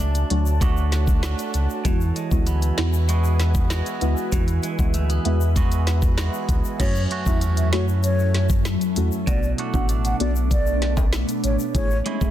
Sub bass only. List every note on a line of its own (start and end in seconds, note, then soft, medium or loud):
0.00 0.24 C#2 loud
0.30 1.35 D2 loud
1.54 1.67 C#2 loud
1.85 2.12 E2 loud
2.31 2.72 D2 medium
2.78 3.82 E2 medium
4.01 4.15 D2 medium
4.32 4.59 E2 loud
4.79 5.19 D2 medium
5.25 6.29 E2 medium
6.49 6.62 D2 loud
6.80 7.07 F#2 loud
7.26 7.74 E2 medium
7.73 8.77 F#2 medium
8.96 9.10 E2 loud
9.27 9.54 B1 loud
9.74 10.14 A1 medium
10.20 11.24 B1 medium
11.44 11.57 A1 medium
11.75 12.02 A1 loud
12.21 12.30 G#1 medium